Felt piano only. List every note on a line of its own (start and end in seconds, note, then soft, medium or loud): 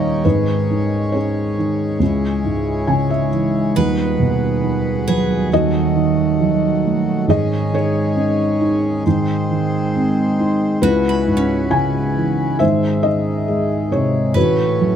0.00 0.20 D#1 medium
0.00 0.21 D#2 medium
0.00 0.21 A#2 medium
0.00 0.22 D#3 medium
0.00 0.24 G3 medium
0.00 0.27 C#5 medium
0.00 0.27 D#5 loud
0.00 0.26 F5 medium
0.25 1.97 G#1 medium
0.25 1.97 G#2 medium
0.25 1.97 D#4 medium
0.25 1.15 B4 medium
0.71 1.57 D#3 medium
1.12 1.98 C#4 medium
1.12 3.29 G#4 medium
1.12 3.28 C#5 medium
1.59 2.00 D#3 medium
2.00 3.72 C#2 medium
2.45 3.72 G#2 medium
2.87 3.73 C#3 medium
2.87 3.08 G#5 medium
3.10 3.72 E5 medium
3.30 3.74 E3 medium
3.76 5.48 D#1 medium
3.76 5.48 D#2 medium
4.19 5.48 B2 medium
4.63 5.49 D#3 medium
5.08 5.51 F#3 medium
5.08 5.53 B4 medium
5.52 7.25 D#1 medium
5.52 7.25 D#2 medium
5.52 7.26 F#4 medium
5.52 7.28 D#5 loud
5.96 7.25 D#3 medium
6.41 7.26 F#3 medium
6.85 7.28 A3 medium
7.28 9.01 G#1 medium
7.28 9.01 G#2 medium
7.28 7.73 G#4 medium
7.28 7.75 D#5 loud
7.73 9.01 D#3 medium
7.73 9.02 G#4 medium
7.73 9.02 C#5 medium
8.15 9.02 C#4 medium
8.60 9.04 D#4 medium
9.06 10.79 G#1 medium
9.06 10.79 G#2 medium
9.51 10.79 D#3 medium
9.95 10.80 C4 medium
10.39 10.82 D#4 medium
10.82 12.55 C#2 medium
10.82 12.56 E4 medium
10.82 11.74 B4 medium
11.27 12.56 G#2 medium
11.71 12.57 C#3 medium
11.71 12.62 G#5 medium
12.15 12.58 E3 medium
12.59 14.33 G#1 medium
12.59 14.32 G#2 medium
12.59 14.32 C5 medium
12.59 13.05 E5 medium
13.03 14.32 D#3 medium
13.03 13.87 D#5 medium
13.48 14.33 G#3 medium
13.92 14.34 C3 medium
13.92 14.37 C#5 medium
14.34 14.96 A1 medium
14.34 14.96 A2 medium
14.34 14.96 F#4 medium
14.34 14.96 B4 medium
14.81 14.96 F#3 medium